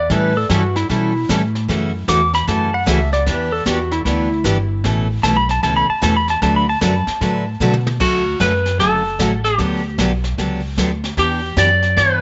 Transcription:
Already playing: D5
0.10 A2 E3 G3 C#4 E4 A4 B4, brush sweep, kick, snare
0.37 A4
0.49 G2 E3 G3 C#4 E4 F#4 A4, kick, snare, hi-hat pedal
0.76 E4, snare
0.89 B2 E3 G3 C#4 E4 A4, brush sweep, kick, snare
1.29 A2 E3 G3 C#4 E4 A4, kick, snare, hi-hat pedal
1.55 snare
1.68 F#2 C#3 E3 A3 C#4 F#4, brush sweep, kick, snare
2.08 E2 C#3 E3 A3 C#4 F#4 D6, kick, snare, hi-hat pedal
2.33 B5, snare
2.47 F#2 C#3 E3 A3 C#4 F#4 A5, brush sweep, kick, snare
2.74 F#5
2.86 C#2 C#3 E3 A3 C#4 F#4 E5, kick, snare, hi-hat pedal
3.12 D5, snare
3.26 E2 E3 B3 D4 G4 B4, brush sweep, kick, snare
3.52 A4
3.66 E2 E3 B3 D4 F#4 G4, kick, snare, hi-hat pedal
3.91 E4, snare
4.05 D2 E3 B3 D4 E4 G4, brush sweep, kick, snare
4.44 G1 E3 B3 D4 G4, kick, snare, hi-hat pedal
4.84 A1 B2 E3 A3 C#4 A4, brush sweep, kick, snare
5.23 B1 B2 E3 A3 C#4 A4 A5, kick, snare, hi-hat pedal
5.37 B5
5.49 A5, snare
5.63 C#2 B2 E3 A3 C#4 A4 A5, brush sweep, kick, snare
5.76 B5
5.89 A5, muted upright bass stroke
6.02 E2 B2 E3 A3 C#4 A4 A5, kick, snare, hi-hat pedal
6.17 B5
6.28 A5, snare
6.42 D2 D3 F#3 A3 D4 F#4 B4 A5, brush sweep, kick, snare
6.56 B5
6.69 A5
6.81 F#2 D3 F#3 A3 D4 F#4 B4, kick, snare, hi-hat pedal
7.07 muted upright bass stroke, snare
7.21 A2 D3 F#3 A3 D4 F#4 B4, brush sweep, kick, snare
7.60 B2 D3 F#3 A3 D4 F#4 B4, hi-hat pedal
7.74 high tom
7.87 high tom
8.00 D2 D3 F#3 A3 C#4 F#4, brush sweep, kick, snare, crash
8.40 F#2 D3 F#3 A3 C#4 F#4 B4, kick, snare, hi-hat pedal
8.66 snare
8.79 F#1 D3 F#3 A3 C#4 F#4 A4, brush sweep, kick, snare
9.19 A1 D3 F#3 A3 C#4 F#4, kick, snare, hi-hat pedal
9.45 G4, snare
9.58 D2 D3 F#3 B3 D4 G4, brush sweep, kick, snare
9.98 B1 D3 F#3 B3 D4 G4, kick, snare, hi-hat pedal
10.24 snare
10.38 C#2 D3 F#3 B3 D4 G4, brush sweep, kick, snare
10.77 D2 D3 F#3 B3 D4 G4, kick, snare, hi-hat pedal
11.04 snare
11.17 E2 E3 B3 D4 G4, brush sweep, kick, snare
11.56 F#2 E3 B3 D4 G4 D5, kick, snare, hi-hat pedal
11.82 snare
11.97 G2 E3 B3 D4 G4 B4, brush sweep, kick, snare

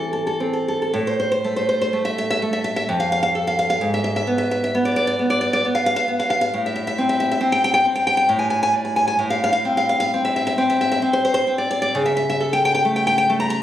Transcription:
Already playing: A2 E3 C4 A4
0.13 A4
0.27 A4
0.40 C4
0.53 A4
0.68 A4
0.82 A4
0.93 A2
1.07 C5
1.20 C5
1.32 C5
1.44 A3
1.56 C5
1.69 C5
1.81 C5
1.93 A3
2.05 E5
2.18 E5
2.30 E5
2.42 A3
2.53 E5
2.64 E5
2.76 E5
2.89 F2
3.00 F5
3.12 F5
3.23 F5
3.35 A4
3.47 F5
3.59 F5
3.70 F5
3.81 G#2
3.94 E5
4.04 E5
4.16 E5
4.27 B3
4.38 E5
4.51 E5
4.64 E5
4.75 B3
4.85 D5
4.96 D5
5.07 D5
5.19 B3
5.30 D5
5.41 D5
5.53 D5
5.65 B3
5.75 F5
5.86 F5
5.96 F5
6.08 B3
6.20 F5
6.30 F5
6.41 F5
6.54 A2
6.66 E5
6.76 E5
6.87 E5
6.98 C4
7.09 E5
7.20 E5
7.31 E5
7.41 C4
7.52 G5
7.64 G5
7.74 G5
7.85 C4
7.95 G5
8.07 G5
8.17 G5
8.29 A2
8.39 G#5
8.50 G#5
8.63 G#5
8.73 D5
8.85 G#5
8.96 G#5
9.08 G#5
9.19 A2
9.30 F5
9.44 F5
9.53 F5
9.65 C4
9.77 F5
9.89 F5
10.00 F5
10.14 C4
10.25 E5
10.36 E5
10.47 E5
10.58 C4
10.70 E5
10.81 E5
10.92 E5
11.02 C4
11.13 C5
11.25 C5
11.34 C5
11.47 C4
11.58 D5
11.71 D5
11.82 D5
11.95 C#3
12.06 E5
12.17 E5
12.30 E5
12.40 A4
12.53 G5
12.65 G5
12.75 G5
12.85 A3
12.96 G5
13.07 G5
13.18 G5
13.30 A3
13.40 A#5
13.50 A#5

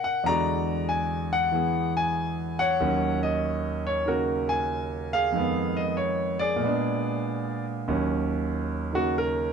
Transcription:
Already playing: B2 A#3 C#4 D#4 A#4
0.04 F#5
0.24 E2 D3 G#3 D5 A#5
0.29 F#4
0.89 G#5
1.33 F#5
1.52 E3 B3 G#4
1.97 G#5
2.59 C#5 F#5
2.80 D#2 D#3 F#3 C#4
3.23 D#5
3.87 C#5
4.06 C#3 D#3 A#3 F#4 A#4
4.49 G#5
5.13 G#4 F5
5.32 F2 D#3 G#3
5.37 B3
5.77 D#5
5.97 C#5
6.39 G#4 D5
6.56 A#2 G#3
6.64 B3 D4
7.88 D#2 D#3 F#3 C#4
8.93 C#3 D#3 A#3 F#4
9.18 A#4

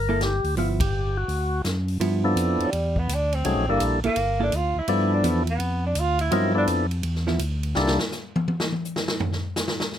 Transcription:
Already playing: G1 A#4
0.09 A#3 E4 A4
0.21 G4, snare, closed hi-hat
0.44 D2, open hi-hat
0.56 G1 F3 B3 E4 F4, open hi-hat
0.80 G4, kick, ride
1.17 F#4
1.28 D2, open hi-hat
1.64 F#2, snare, closed hi-hat
1.88 open hi-hat
2.00 G2 F3 B3 E4, ride
2.24 F3 B3 D4 E4 A4
2.36 F2, hi-hat pedal, ride
2.60 F2 G3, ride
2.72 E2, ride
2.96 B3, kick
3.09 D2, hi-hat pedal, ride
3.14 D4
3.33 C4, ride
3.45 C2 F#3 A3 C#4 D#4 G#4, ride
3.56 A#1
3.69 G1 G3 A#3 D4 E4 A4
3.80 A#1, hi-hat pedal, ride
4.04 A#1 A#3 E4 A4, ride
4.16 G1, ride
4.40 A#3 D4 E4 A4
4.52 D2 F4, hi-hat pedal, ride
4.75 D2 E4
4.88 G2 F3 B3 D4 E4 A4, ride
5.14 D4
5.23 E2 F3 B3 E4, hi-hat pedal, ride
5.47 B3, ride
5.59 F2, ride
5.86 D4
5.95 D2, hi-hat pedal, ride
6.00 F4
6.19 E4, ride
6.31 G2 F3 F#3 B3 C4 D#4 E4 F4 A#4, ride
6.54 F3 B3 D4 E4 A4
6.67 F2, hi-hat pedal, ride
6.91 ride
7.03 E2, ride
7.15 snare
7.27 F3 B3 E4, snare
7.39 D2, hi-hat pedal, ride
7.63 ride
7.75 C2 G3 A#3 D4 E4 A4, snare
7.87 snare
7.99 snare
8.12 snare, hi-hat pedal
8.36 high tom
8.48 high tom
8.60 snare
8.72 high tom
8.85 hi-hat pedal
8.96 snare
9.08 snare
9.20 floor tom
9.32 snare
9.56 snare, hi-hat pedal
9.68 snare
9.80 snare
9.92 snare

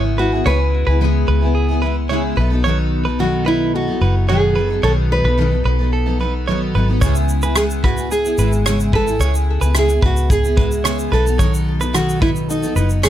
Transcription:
Already playing: G#1 C#3 G#3 B3 E4 G#4
0.18 G#3 B3 E4 F#4 G#4 B4
0.32 B3 E4 G#4
0.45 C#2 C#3 G#3 B3 E4 G#4 B4 C#5
0.87 C#2 B3 E4 G#4 B4
1.01 C#3 G#3 B3 E4 G#4
1.28 C#2 B4
1.41 B3 E4 G#4
1.55 G#4
1.68 B3 E4 G#4
1.82 G#3 B3 E4 G#4 B4
2.09 C#3 G#3 B3 E4 G#4 C#5
2.36 B1 F#3 B3 D#4 A4 B4
2.50 F#3 B3 D#4 A4
2.64 B2 D#3 F#3 B3 D#4 A4 C#5
3.05 F#3 B3 D#4 A4 B4
3.19 B2 D#3 F#3 B3 D#4 F#4 A4
3.46 E4 B4
3.74 F#4 A4
3.87 F#3 B3 D#4 A4
4.01 F#1 F#3 B3 D#4 A4 B4
4.28 B2 D#3 F#3 B3 D#4 G#4 A4 C#5
4.55 F#3 B3 D#4 A4 B4
4.69 F#3 B3 D#4 A4
4.83 B1 B2 D#3 F#3 B3 D#4 A4 C#5
5.12 B4
5.24 B1 F#3 B3 D#4 A4 B4
5.38 B2 D#3 F#3 B3 D#4 A4
5.51 F#3 B3 D#4 A4
5.65 B1 B4
5.78 F#3 B3 D#4 A4
5.93 A4
6.06 F#3 B3 D#4 A4
6.20 F#3 B3 D#4 A4 B4
6.48 B2 D#3 F#3 B3 D#4 A4 C#5
6.74 G#1 F#3 B3 D#4 A4 B4
6.88 F#3 B3 D#4 A4
7.01 C#2 C#3 G#3 B3 E4 G#4 C#5, kick, shaker
7.15 shaker
7.29 shaker
7.42 B3 E4 G#4 B4, shaker
7.56 C#3 G#3 B3 E4 G#4, cross-stick, shaker
7.70 shaker
7.84 F#4 B4, kick
7.97 B3 E4 G#4, shaker
8.11 G#4, shaker
8.24 B3 E4 G#4, shaker
8.38 G#1 G#3 B3 E4 G#4 B4, shaker
8.53 shaker
8.65 C#3 G#3 B3 E4 G#4 C#5, cross-stick, shaker
8.80 shaker
8.92 G#3 B3 E4 G#4 A4 B4, kick
9.06 B3 E4 G#4, shaker
9.19 C#2 C#3 G#3 B3 E4 G#4 C#5, shaker
9.35 shaker
9.61 C#2 B3 E4 G#4 B4, shaker
9.74 C#3 G#3 B3 E4 G#4, cross-stick, shaker
9.79 G#4
9.88 B3 E4 G#4, shaker
10.02 C#2 F#4 B4, kick
10.17 shaker
10.30 G#4, kick, shaker
10.43 B3 E4 G#4, shaker
10.56 G#3 B3 E4 G#4 B4, kick
10.72 shaker
10.84 C#3 G#3 B3 E4 G#4 C#5, cross-stick, shaker
10.99 shaker
11.11 B1 F#3 B3 D#4 A4 B4, cross-stick
11.25 F#3 B3 D#4 A4, shaker
11.39 B2 D#3 F#3 B3 D#4 A4 C#5, kick, shaker
11.54 shaker
11.80 F#3 B3 D#4 A4 B4, shaker
11.93 B2 D#3 F#3 B3 D#4 F#4 A4, cross-stick, shaker
12.09 shaker
12.22 E4 B4, kick
12.36 shaker
12.49 D#4 A4, shaker
12.62 F#3 B3 D#4 A4, shaker
12.76 F#1 F#3 B3 D#4 A4 B4, shaker
12.90 shaker
13.03 B2 D#3 F#3 B3 D#4 G#4 A4 C#5, cross-stick, shaker

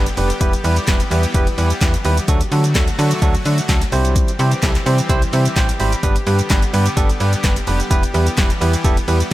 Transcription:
Already playing: D3 G3 B3 G4
0.06 closed hi-hat, shaker
0.17 F1 G3 B3 D4 G4 B4, open hi-hat, shaker
0.30 closed hi-hat, shaker
0.41 E1 E3 G3 B3 E4 G4 B4, kick, closed hi-hat, shaker
0.53 closed hi-hat, shaker
0.64 E2 G3 B3 E4 G4 B4, open hi-hat, shaker
0.76 closed hi-hat, shaker
0.87 E1 G3 B3 E4 G4 B4, kick, snare, clap, closed hi-hat, shaker
1.00 closed hi-hat, shaker
1.11 E2 G3 B3 E4 G4 B4, open hi-hat, shaker
1.23 closed hi-hat, shaker
1.34 E1 G3 B3 E4 G4 B4, kick, closed hi-hat, shaker
1.47 closed hi-hat, shaker
1.58 E2 G3 B3 E4 G4 B4, open hi-hat, shaker
1.70 closed hi-hat, shaker
1.81 E2 G3 B3 E4 G4 B4, kick, snare, clap, closed hi-hat, shaker
1.94 closed hi-hat, shaker
2.05 D#2 G3 B3 E4 G4 B4, open hi-hat, shaker
2.17 closed hi-hat, shaker
2.28 D2 D3 F#3 A3 D4 F#4 A4, kick, closed hi-hat, shaker
2.41 closed hi-hat, shaker
2.52 D3 F#3 A3 D4 F#4 A4, open hi-hat, shaker
2.64 closed hi-hat, shaker
2.75 D2 F#3 A3 D4 F#4 A4, kick, snare, clap, closed hi-hat, shaker
2.88 closed hi-hat, shaker
2.98 D3 F#3 A3 D4 F#4 A4, open hi-hat, shaker
3.11 closed hi-hat, shaker
3.22 D2 F#3 A3 D4 F#4 A4, kick, closed hi-hat, shaker
3.35 closed hi-hat, shaker
3.45 D3 F#3 A3 D4 F#4 A4, open hi-hat, shaker
3.58 closed hi-hat, shaker
3.69 C#2 F#3 A3 D4 F#4 A4, kick, snare, clap, closed hi-hat, shaker
3.81 closed hi-hat, shaker
3.92 C2 E3 G3 C4 E4 G4 C5, open hi-hat, shaker
4.05 closed hi-hat, shaker
4.16 kick, closed hi-hat, shaker
4.28 closed hi-hat, shaker
4.39 C3 G3 C4 E4 G4 C5, open hi-hat, shaker
4.51 closed hi-hat, shaker
4.62 C2 G3 C4 E4 G4 A4, kick, snare, clap, closed hi-hat, shaker
4.75 clap, closed hi-hat, shaker
4.86 C3 G3 C4 E4 G4 C5, open hi-hat, shaker
4.98 closed hi-hat, shaker
5.09 C2 G3 C4 E4 G4 C5, kick, closed hi-hat, shaker
5.22 closed hi-hat, shaker
5.33 C3 G3 C4 E4 G4 C5 E5, open hi-hat, shaker
5.45 closed hi-hat, shaker
5.56 A1 G3 C4 E4 G4 C5 G5, kick, snare, clap, closed hi-hat, shaker
5.69 closed hi-hat, shaker
5.80 G#1 G3 C4 E4 G4 C5 B5, open hi-hat, shaker
5.92 closed hi-hat, shaker
6.03 G1 D3 G3 B3 D4 G4 B4, kick, closed hi-hat, shaker
6.16 closed hi-hat, shaker
6.27 G2 G3 B3 D4 G4 B4, open hi-hat, shaker
6.39 closed hi-hat, shaker
6.50 G1 G3 B3 D4 G4 B4, kick, snare, clap, closed hi-hat, shaker
6.62 closed hi-hat, shaker
6.73 G2 G3 B3 D4 G4 B4, open hi-hat, shaker
6.86 closed hi-hat, shaker
6.97 G1 G3 B3 D4 G4 A4, kick, closed hi-hat, shaker
7.09 closed hi-hat, shaker
7.20 G2 G3 B3 D4 G4 B4, open hi-hat, shaker
7.33 closed hi-hat, shaker
7.43 F#1 G3 B3 D4 G4 B4, kick, snare, clap, closed hi-hat, shaker
7.56 closed hi-hat, shaker
7.67 F1 G3 B3 D4 G4 B4, open hi-hat, shaker
7.80 closed hi-hat, shaker
7.90 E1 E3 G3 B3 E4 G4 B4, kick, closed hi-hat, shaker
8.03 closed hi-hat, shaker
8.14 E2 G3 B3 E4 G4 B4, open hi-hat, shaker
8.27 closed hi-hat, shaker
8.37 E1 G3 B3 E4 G4 B4, kick, snare, clap, closed hi-hat, shaker
8.50 closed hi-hat, shaker
8.61 E2 G3 B3 E4 G4 B4, open hi-hat, shaker
8.73 closed hi-hat, shaker
8.84 E1 G3 B3 E4 G4 A4, kick, closed hi-hat, shaker
8.97 closed hi-hat, shaker
9.08 E2 G3 B3 E4 G4 B4, open hi-hat, shaker
9.20 closed hi-hat, shaker

